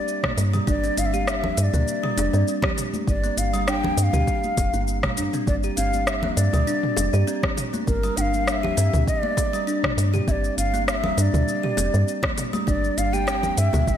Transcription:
Already playing: D5
0.08 cabasa
0.23 A#3, kick, cross-stick, mid tom, high conga
0.38 G2, open hi-hat, cabasa
0.53 G3, mid tom, cabasa
0.67 G1 D4 D5, kick, cabasa
0.84 C4, cabasa
0.98 G1 F5, open hi-hat, cabasa
1.06 E5
1.14 G4 F5, high conga, cabasa
1.28 E5, cross-stick, cabasa
1.44 low conga
1.57 G2 E5, open hi-hat, cabasa
1.63 D5
1.74 D2 A#3, mid tom, cabasa
1.88 cabasa
2.03 G3, mid tom
2.17 F1 D4, open hi-hat, high bongo, high conga, cabasa
2.33 G2 C4, cabasa
2.48 cabasa
2.62 G4, kick, cross-stick, low conga
2.78 mid tom, open hi-hat, high bongo, cabasa
2.94 high conga, cabasa
3.07 G1 D5, kick, cabasa
3.24 A#3, cabasa
3.37 G1 F5, open hi-hat, cabasa
3.54 G3, high conga, cabasa
3.68 D4 G5, cross-stick, cabasa
3.84 C4, low conga
3.97 G2 G5, open hi-hat, cabasa
4.03 F5
4.13 D2 G4, mid tom, high bongo, cabasa
4.28 kick, cabasa
4.44 high conga, cabasa
4.57 F1, kick, open hi-hat, high bongo, cabasa
4.74 G1 A#3, high conga, cabasa
4.88 cabasa
5.03 G3, kick, cross-stick, mid tom, high conga
5.17 G2 D4, open hi-hat, cabasa
5.33 C4, mid tom, cabasa
5.47 G1 D5, kick, cabasa
5.63 G4, cabasa
5.77 G1 C4 F5, open hi-hat, cabasa
5.93 high conga, cabasa
6.07 E5, cross-stick, cabasa
6.23 A#3, low conga
6.36 G2 D5, open hi-hat, cabasa
6.53 D2 G3, mid tom, cabasa
6.67 D4, cabasa
6.83 mid tom
6.97 F1, open hi-hat, high bongo, high conga, cabasa
7.13 G2 G4, cabasa
7.27 C4, cabasa
7.43 kick, cross-stick, low conga
7.57 mid tom, open hi-hat, high bongo, cabasa
7.74 A#3, high conga, cabasa
7.87 G1 A#4, kick, cabasa
8.03 G3, cabasa
8.17 G1 D4 F5 G5, open hi-hat, cabasa
8.33 high conga, cabasa
8.47 F5, cross-stick, cabasa
8.52 E5
8.63 G4, low conga
8.77 G2 C4, open hi-hat, cabasa
8.93 D2, mid tom, high bongo, cabasa
9.07 D5, kick, cabasa
9.23 A#3, high conga
9.37 kick, open hi-hat, high bongo, cabasa
9.53 G3, high conga, cabasa
9.67 D4, cabasa
9.84 kick, cross-stick, mid tom, high conga
9.98 G2, open hi-hat, cabasa
10.14 G4, mid tom, cabasa
10.28 G1 C4 D5 E5, kick, cabasa
10.44 cabasa
10.58 G1 F5, open hi-hat, cabasa
10.74 A#3, high conga, cabasa
10.87 F5, cross-stick, cabasa
10.92 E5
11.04 G3, low conga
11.17 G2 D4 E5, open hi-hat, cabasa
11.22 D5
11.34 D2, mid tom, cabasa
11.48 cabasa
11.63 G4, mid tom
11.77 F1 C4, open hi-hat, high bongo, high conga, cabasa
11.94 G2, cabasa
12.08 cabasa
12.23 A#3, kick, cross-stick, low conga
12.38 mid tom, open hi-hat, high bongo, cabasa
12.53 G3, high conga, cabasa
12.67 G1 D4 D5, kick, cabasa
12.84 cabasa
12.98 G1 F5, open hi-hat, cabasa
13.13 G4 G5, high conga, cabasa
13.27 C4, cross-stick, cabasa
13.43 low conga, cabasa
13.57 G2 E5, open hi-hat, high conga, cabasa
13.73 D2 A#3, mid tom, high bongo, cabasa
13.87 G1 D5, kick, cabasa

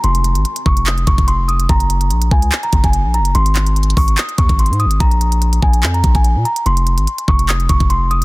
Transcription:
0.04 F1 C6, closed hi-hat
0.15 closed hi-hat
0.24 closed hi-hat
0.35 G#1, closed hi-hat
0.45 closed hi-hat
0.56 closed hi-hat
0.66 F1 C#6, kick
0.77 closed hi-hat
0.86 D#6, clap, closed hi-hat
0.98 closed hi-hat
1.07 F1 C#6, kick, closed hi-hat
1.18 F1, kick, closed hi-hat
1.28 C6, closed hi-hat
1.48 D#6, closed hi-hat
1.60 closed hi-hat
1.69 F#1 A#5, kick, closed hi-hat
1.80 closed hi-hat
1.90 closed hi-hat
2.01 closed hi-hat
2.11 A#1, closed hi-hat
2.22 closed hi-hat
2.31 C#2 G#5, kick
2.42 closed hi-hat
2.52 clap, closed hi-hat
2.63 A#5, closed hi-hat
2.73 F#1, kick, closed hi-hat
2.84 F#1 G#5, kick, closed hi-hat
2.93 closed hi-hat
3.04 A#1
3.14 A#5, closed hi-hat
3.20 F#1
3.25 closed hi-hat
3.35 G#1 C6, closed hi-hat
3.46 closed hi-hat
3.56 clap, closed hi-hat
3.67 closed hi-hat
3.76 closed hi-hat
3.83 closed hi-hat
3.90 closed hi-hat
3.97 G#1 C#6, kick, open hi-hat
4.08 closed hi-hat
4.18 D#6, clap, closed hi-hat
4.29 closed hi-hat
4.38 D#2 C#6, kick, closed hi-hat
4.49 G#1, kick, closed hi-hat
4.59 C6, closed hi-hat
4.66 closed hi-hat
4.70 G#2, closed hi-hat
4.80 D#6, closed hi-hat
4.85 G#1
4.91 closed hi-hat
5.00 A#1 A#5, kick, closed hi-hat
5.11 closed hi-hat
5.21 closed hi-hat
5.32 closed hi-hat
5.42 closed hi-hat
5.53 closed hi-hat
5.62 A#1 G#5, kick
5.73 closed hi-hat
5.83 F2, clap, closed hi-hat
5.94 A#5, closed hi-hat
6.04 A#1, kick, closed hi-hat
6.15 A#1 G#5, kick, closed hi-hat
6.24 closed hi-hat
6.36 A#2
6.45 A#5, closed hi-hat
6.56 closed hi-hat
6.66 F1 C6, closed hi-hat
6.77 closed hi-hat
6.87 closed hi-hat
6.98 G#1, closed hi-hat
7.07 closed hi-hat
7.18 closed hi-hat
7.28 F1 C#6, kick
7.39 closed hi-hat
7.49 D#6, clap, closed hi-hat
7.60 closed hi-hat
7.69 F1 C#6, kick, closed hi-hat
7.80 F1, kick, closed hi-hat
7.90 C6, closed hi-hat
8.11 D#6, closed hi-hat

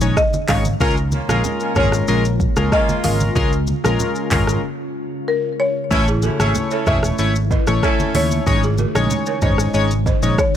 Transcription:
Already playing: C#3 D#3 G#3 D#4 C#5
0.01 A#1 G#3 C#4 D#4 C#5, shaker
0.17 D#5, kick, cross-stick, shaker
0.33 high conga, shaker
0.48 G#1 G#3 C#4 D#4 C#5 F5, kick, cross-stick, clap, open hi-hat, high conga, low conga, shaker
0.65 high conga, shaker
0.80 C#2 G#3 A#3 C#4 F4 A#4, kick, low conga, shaker
0.97 shaker
1.12 A#3 C#4 F4, high conga, shaker
1.29 A#1 G#3 C#4 F4 G#4 A#4, cross-stick, high conga, shaker
1.44 low conga, shaker
1.60 C#4 F4 A#4, shaker
1.76 G#1 G#3 C#4 F4 G#4 A#4 C#5, kick, cross-stick, mid tom, high conga, shaker
1.92 cross-stick, shaker
2.08 A#1 G#3 C#4 F4 A#4, shaker
2.25 shaker
2.40 kick, shaker
2.56 C#2 G#3 C#4 F4 A#4, cross-stick, shaker
2.72 A#3 C#4 F4 D#5, kick, cross-stick, shaker
2.89 high conga, shaker
3.04 G#1 G#3 C#4 F4 A#4 F5, open hi-hat, high conga, low conga, shaker
3.20 high conga, shaker
3.35 C#2 G#3 C#4 F4 A#4, kick, low conga, shaker
3.52 shaker
3.67 high conga, shaker
3.84 A#1 G#3 C#4 F4 A#4, cross-stick, high conga, shaker
3.99 low conga, shaker
4.15 shaker
4.31 G#1 G#3 C#4 F4 A#4, kick, clap, mid tom, open hi-hat, high conga, shaker
4.47 cross-stick, shaker
5.28 A#4
5.60 C#5
5.91 A1 C#3 A3 C#4 E4 A4 C#5, kick, low conga, shaker
6.08 E4 G#4, shaker
6.22 A3 C#4 E4 F#4 A4, high conga, shaker
6.39 G#1 A3 C#4 E4 G#4 C#5, cross-stick, high conga, shaker
6.55 low conga, shaker
6.71 C#4 E4 A4 C#5, shaker
6.87 E1 A3 C#4 E4 G#4 B4 C#5 D#5 E5, kick, cross-stick, mid tom, high conga, shaker
7.03 cross-stick, shaker
7.18 G#1 A3 C#4 E4 C#5, shaker
7.36 shaker
7.51 B4 D#5, kick, shaker
7.67 A1 A3 C#4 E4 C#5, cross-stick, shaker
7.83 C#4 E4 A4 C#5, kick, cross-stick, shaker
8.00 high conga, shaker
8.14 D#2 A3 C#4 E4 C#5 E5, open hi-hat, high conga, low conga, shaker
8.31 high conga, shaker
8.46 G#1 D#3 G#3 C#4 D#4 C#5, kick, low conga, shaker
8.63 F4 G#4, shaker
8.78 F#4 A#4, high conga, shaker
8.95 A#1 G#3 C#4 D#4 C#5, cross-stick, high conga, shaker
9.10 low conga, shaker
9.26 A#4 C#5, shaker
9.42 G#1 G#3 C#4 D#4 C5 C#5 D#5, kick, mid tom, high conga, shaker
9.58 cross-stick, shaker
9.74 G#1 G#3 C#4 D#4 C#5, shaker
9.91 shaker
10.06 C5 D#5, kick, shaker
10.23 A#1 G#3 C#4 D#4 C#5, shaker
10.38 C#5, kick, cross-stick, shaker

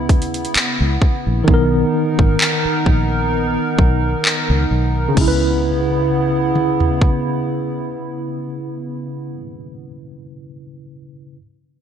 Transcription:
Already playing: C#3 B3 C#4 E4 B4
0.09 D#2, kick, closed hi-hat
0.22 closed hi-hat
0.34 closed hi-hat
0.45 closed hi-hat
0.55 muted fingered electric bass stroke, clap, closed hi-hat
0.80 C#2
1.02 kick
1.27 A#1
1.44 B1 D#3 B3 D#4 A#4, kick
1.50 D#4 A#4
2.19 G#1, kick
2.41 clap
2.65 muted fingered electric bass stroke
2.86 A#1, kick
3.79 B1, kick
4.25 clap
4.50 C#2
4.71 B1
5.08 C#3
5.15 C#2 C#3 B3 C#4 E4, kick, crash
5.21 E4
5.28 B4
6.55 mid tom
6.80 floor tom
7.02 kick

